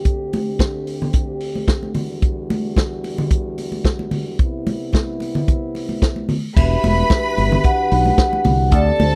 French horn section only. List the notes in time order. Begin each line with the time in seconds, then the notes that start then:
Already playing: D3 G4
0.05 D2 C4
1.95 E2 G3 F#4
4.40 C2 C3 B3 E4
6.56 E3 D4 F#4 G4
8.73 D3 A3 C4 G4